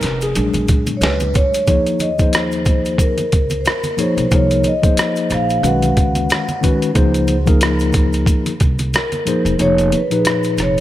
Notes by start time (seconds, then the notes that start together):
Already playing: A#4
0.01 F1, snare, closed hi-hat, low conga, maracas
0.21 G#4, closed hi-hat, maracas
0.35 A#1 F#3 G#3 D4, closed hi-hat, maracas
0.54 A#1, closed hi-hat, high conga, maracas
0.68 A#2, kick, closed hi-hat, maracas
0.87 closed hi-hat, high conga, maracas
0.97 C#5
1.01 C#2 B4, snare, closed hi-hat, high conga, maracas
1.20 closed hi-hat, high conga, maracas
1.34 D2 C#5, kick, closed hi-hat, low conga, maracas
1.54 closed hi-hat, maracas
1.67 D#2 F3 A#3 D#4 G#4 C#5, kick, closed hi-hat, maracas
1.86 closed hi-hat, maracas
2.00 D#5, closed hi-hat, high conga, maracas
2.18 F3 A#3 D#4 G#4 C5, kick, closed hi-hat, maracas
2.33 C5, cross-stick, closed hi-hat, maracas
2.52 closed hi-hat, maracas
2.65 kick, closed hi-hat, low conga, maracas
2.85 closed hi-hat, maracas
2.98 A#4, kick, closed hi-hat, maracas
3.18 closed hi-hat, high conga, maracas
3.32 C#2, kick, closed hi-hat, maracas
3.50 closed hi-hat, high conga, maracas
3.61 C5
3.65 A#4, cross-stick, closed hi-hat, high conga, maracas
3.84 closed hi-hat, high conga, maracas
3.97 F3 A#3 D#4 G#4 C5 C#5, closed hi-hat, low conga, maracas
4.17 B1, closed hi-hat, maracas
4.30 C2 F3 A#3 D#4 G#4 A#4, kick, closed hi-hat, maracas
4.34 C#5
4.51 closed hi-hat, maracas
4.64 D#5, closed hi-hat, high conga, maracas
4.82 F3 A#3 D#4 G#4 C5, kick, closed hi-hat, maracas
4.97 cross-stick, closed hi-hat, maracas
5.16 closed hi-hat, maracas
5.30 A#1 F5, cross-stick, closed hi-hat, low conga, maracas
5.50 closed hi-hat, maracas
5.62 B1 D#3 G#3 C#4 F#4 B4 F#5, closed hi-hat, maracas
5.82 closed hi-hat, high conga, maracas
5.97 C#2, kick, closed hi-hat, maracas
6.15 closed hi-hat, high conga, maracas
6.30 cross-stick, closed hi-hat, high conga, maracas
6.48 closed hi-hat, high conga, maracas
6.61 D#3 G#3 C#4 F#4 B4, kick, closed hi-hat, low conga, maracas
6.82 closed hi-hat, maracas
6.94 C#2 F3 A#3 D#4 G#4 C5, kick, closed hi-hat, maracas
7.14 closed hi-hat, maracas
7.28 closed hi-hat, high conga, maracas
7.46 F3 A#3 D#4 G#4 A#4, kick, closed hi-hat, maracas
7.61 cross-stick, closed hi-hat, maracas
7.79 closed hi-hat, maracas
7.93 kick, closed hi-hat, low conga, maracas
8.13 closed hi-hat, maracas
8.26 kick, closed hi-hat, maracas
8.46 closed hi-hat, high conga, maracas
8.60 C2, kick, closed hi-hat, maracas
8.79 closed hi-hat, high conga, maracas
8.94 A#4, cross-stick, closed hi-hat, high conga, maracas
9.12 closed hi-hat, high conga, maracas
9.26 F3 A#3 D#4 G#4 C5, closed hi-hat, low conga, maracas
9.45 E1, closed hi-hat, maracas
9.58 F1 F3 A#3 D#4 G#4 C#5, closed hi-hat, maracas
9.78 closed hi-hat, maracas
9.92 B4, closed hi-hat, high conga, maracas
10.10 A#2 F3 D#4 G4 B4, closed hi-hat, maracas
10.19 G#4
10.25 cross-stick, closed hi-hat, low conga, maracas
10.43 closed hi-hat, maracas
10.58 F1 C#5, cross-stick, closed hi-hat, low conga, maracas